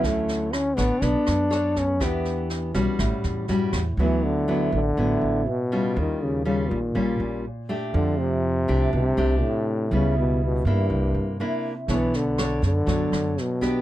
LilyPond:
<<
  \new Staff \with { instrumentName = "Nylon-string guitar" } { \time 4/4 \key d \major \tempo 4 = 121 << { <fis cis' e'>4 r8 <d' a' cis''>4. <d' a' cis''>8 r8 | <b d' g'>4. <g cis' fis'>4. <g cis' fis'>8 r8 | <fis b e'>4 <fis b e'>8 r8 <fis b e'>4 r8 <g cis' f'>8~ | <g cis' f'>4 <g des' f'>8 r8 <g des' f'>4 r8 <a d' g'>8~ |
<a d' g'>4 r8 <a d' g'>4 <a d' g'>4. | <g b e'>4. <bes d' e'>4. <bes d' e'>8 r8 | <d' a' cis''>8 r8 <d' a' cis''>8 r8 <d' a' cis''>4. <b d' g'>8 | } \\ { d2 b2 | e2 a,2 | d2 a,2 | ees2 bes,2 |
f2 c2 | cis2 c2 | b2 fis2 | } >> }
  \new Staff \with { instrumentName = "Trombone" } { \clef bass \time 4/4 \key d \major a4 cis'8 b8 d'4. cis'8 | b4 r2. | e8 d4 d4. b,4 | ees8 des8 des8 bes,4. r4 |
d8 c4. c4 a,4 | cis8 b,8 b,8 g,4. r4 | e8 d4 d4. b,4 | }
  \new Staff \with { instrumentName = "Upright bass" } { \clef bass \time 4/4 \key d \major d,4. a,,16 r16 b,,16 r16 fis,4. | e,4. b,,16 r16 a,,16 r16 e,8 fis,8 e,8 | d,4. a,,8 a,,8 a,,8 r4 | ees,4. bes,,8 bes,,8 bes,,8 r4 |
f,4. c,8 c,8 c,8 r4 | cis,4. g,8 c,8 g,8 r4 | b,,4. fis,8 fis,8 fis,8 r4 | }
  \new DrumStaff \with { instrumentName = "Drums" } \drummode { \time 4/4 <bd sn>8 sn8 <ss sn>8 <bd sn>8 <bd sn>8 <ss sn>8 sn8 <bd sn>8 | <bd ss sn>8 sn8 sn8 <bd sn>8 <bd ss sn>8 sn8 sn8 <bd ss sn>8 | r4 r4 r4 r4 | r4 r4 r4 r4 |
r4 r4 r4 r4 | r4 r4 r4 r4 | <bd sn>8 sn8 <ss sn>8 <bd sn>8 <bd sn>8 <ss sn>8 sn8 <bd sn>8 | }
>>